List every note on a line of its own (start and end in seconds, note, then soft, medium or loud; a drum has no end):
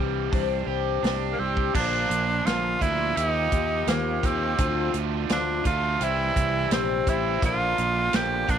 0.00 0.28 C2 medium
0.00 0.68 C3 medium
0.00 1.38 E3 medium
0.00 0.32 G3 soft
0.00 1.74 G3 medium
0.00 0.33 C4 soft
0.00 0.33 D4 soft
0.00 0.32 G4 medium
0.00 0.32 G4 soft
0.32 0.63 C2 medium
0.32 1.04 C3 medium
0.32 1.04 E3 medium
0.32 1.02 G3 medium
0.32 1.03 C4 medium
0.32 1.02 D4 medium
0.32 1.04 D4 medium
0.32 1.04 G4 medium
0.32 kick medium
0.32 open hi-hat soft
0.67 0.98 C2 medium
0.67 1.36 G4 medium
1.03 1.34 C2 medium
1.03 1.39 G3 medium
1.03 1.39 C4 medium
1.03 1.74 D4 medium
1.03 1.40 D4 medium
1.03 1.39 G4 medium
1.03 snare medium
1.03 open hi-hat medium
1.32 1.41 A#3 medium
1.38 1.70 C2 medium
1.38 1.75 C4 medium
1.38 1.75 C4 soft
1.38 1.75 D4 medium
1.38 1.74 G4 medium
1.42 1.75 G3 soft
1.57 kick medium
1.73 2.05 A#1 medium
1.73 2.78 A#2 medium
1.73 2.10 A#2 medium
1.73 2.10 D3 medium
1.73 2.79 F3 medium
1.73 2.11 F3 medium
1.73 2.79 A#3 medium
1.73 2.11 A#3 medium
1.73 2.79 D4 medium
1.73 2.47 D4 medium
1.73 2.11 D4 medium
1.73 2.78 F4 medium
1.73 2.10 A#4 medium
1.73 kick loud
1.73 crash medium
2.10 2.40 A#1 medium
2.10 2.45 F3 soft
2.10 2.46 A#3 soft
2.10 2.46 A#4 soft
2.10 closed hi-hat medium
2.45 2.76 A#1 medium
2.45 2.81 A#2 medium
2.45 2.81 D3 medium
2.45 2.82 F3 medium
2.45 2.81 A#3 medium
2.45 2.80 D4 medium
2.45 2.83 F4 medium
2.45 2.80 A#4 medium
2.45 snare loud
2.45 closed hi-hat medium
2.80 3.12 D2 medium
2.80 3.15 A#2 medium
2.80 3.15 F3 medium
2.80 3.15 F3 soft
2.80 3.15 A#3 medium
2.80 3.16 A#3 soft
2.80 3.14 D4 medium
2.80 3.17 D4 soft
2.80 3.18 E4 loud
2.80 3.14 F4 medium
2.80 3.17 A#4 medium
2.80 kick medium
2.80 closed hi-hat medium
3.15 3.47 D#2 medium
3.15 4.21 D#3 medium
3.15 3.52 F3 medium
3.15 4.21 A#3 medium
3.15 3.52 A#3 medium
3.15 3.90 D#4 loud
3.15 4.22 D#4 medium
3.15 3.52 F4 medium
3.15 3.51 G4 medium
3.15 4.22 G4 medium
3.15 closed hi-hat medium
3.52 3.83 D#2 medium
3.52 3.86 A#3 soft
3.52 3.87 F4 soft
3.52 3.87 G4 medium
3.52 kick medium
3.52 closed hi-hat medium
3.87 4.18 D#2 medium
3.87 4.58 D#3 medium
3.87 4.57 F3 medium
3.87 4.58 A#3 medium
3.87 4.27 A#3 medium
3.87 4.58 F4 medium
3.87 4.59 G4 medium
3.87 snare loud
3.87 closed hi-hat medium
4.23 4.54 D#2 medium
4.23 4.58 D#3 medium
4.23 4.57 A#3 medium
4.23 4.96 C4 medium
4.23 4.57 D#4 medium
4.23 4.56 G4 medium
4.23 kick medium
4.23 closed hi-hat medium
4.58 4.89 D2 medium
4.58 4.94 D3 medium
4.58 5.63 D3 medium
4.58 4.94 F3 medium
4.58 5.63 A3 medium
4.58 4.94 D4 medium
4.58 5.64 D4 medium
4.58 4.94 F4 medium
4.58 5.63 F4 medium
4.58 4.92 A4 medium
4.58 kick loud
4.58 closed hi-hat medium
4.94 5.25 D2 medium
4.94 5.28 D4 soft
4.94 5.29 F4 soft
4.94 5.29 A4 medium
4.94 closed hi-hat medium
5.29 5.60 D2 medium
5.29 5.65 D3 medium
5.29 5.65 F3 medium
5.29 5.65 D4 medium
5.29 5.64 D4 medium
5.29 5.65 F4 medium
5.29 5.64 A4 medium
5.29 snare loud
5.29 closed hi-hat medium
5.64 5.96 D2 medium
5.64 5.99 D3 medium
5.64 5.99 A3 medium
5.64 5.99 D4 medium
5.64 6.01 D4 soft
5.64 5.98 F4 medium
5.64 6.05 F4 medium
5.64 6.01 A4 medium
5.64 kick medium
5.64 closed hi-hat medium
6.00 6.31 C2 medium
6.00 7.05 C3 medium
6.00 7.05 E3 medium
6.00 6.36 G3 medium
6.00 7.05 G3 medium
6.00 6.36 C4 medium
6.00 7.06 C4 medium
6.00 6.36 E4 medium
6.00 7.05 E4 medium
6.00 6.72 E4 loud
6.00 6.35 G4 medium
6.00 closed hi-hat medium
6.36 6.67 C2 medium
6.36 6.71 C4 soft
6.36 6.72 E4 soft
6.36 6.72 G4 medium
6.36 kick medium
6.36 closed hi-hat medium
6.71 7.02 A#1 medium
6.71 7.42 C3 medium
6.71 7.42 G3 medium
6.71 7.42 C4 medium
6.71 7.10 C4 medium
6.71 7.43 E4 medium
6.71 7.43 G4 medium
6.71 snare loud
6.71 closed hi-hat medium
7.06 7.38 A1 medium
7.06 7.41 C3 medium
7.06 7.41 E3 medium
7.06 7.40 G3 medium
7.06 7.40 C4 medium
7.06 7.40 E4 medium
7.06 7.43 E4 medium
7.06 kick medium
7.06 closed hi-hat medium
7.42 7.73 A#1 medium
7.42 8.46 A#2 medium
7.42 7.78 A#2 medium
7.42 8.46 D3 medium
7.42 7.78 D3 medium
7.42 7.78 F3 medium
7.42 7.78 A#3 medium
7.42 8.47 A#3 medium
7.42 7.78 D4 medium
7.42 8.47 D4 medium
7.42 8.46 F4 medium
7.42 8.17 F4 loud
7.42 7.77 A#4 medium
7.42 kick loud
7.42 closed hi-hat medium
7.78 8.09 A#1 medium
7.78 8.12 A#3 soft
7.78 8.13 D4 soft
7.78 closed hi-hat medium
8.13 8.44 A#1 medium
8.13 8.49 A#2 medium
8.13 8.49 D3 medium
8.13 8.49 F3 medium
8.13 8.48 A#3 medium
8.13 8.48 D4 medium
8.13 8.52 G4 loud
8.13 8.47 A#4 medium
8.13 snare loud
8.13 closed hi-hat medium
8.47 8.59 A#1 medium
8.47 8.59 A#2 medium
8.47 8.59 D3 medium
8.47 8.59 F3 soft
8.47 8.59 A#3 medium
8.47 8.59 A#3 soft
8.47 8.59 D4 medium
8.47 8.59 D4 soft
8.47 8.59 D4 medium
8.47 8.59 F4 medium
8.47 8.59 A#4 medium
8.47 kick medium
8.47 closed hi-hat medium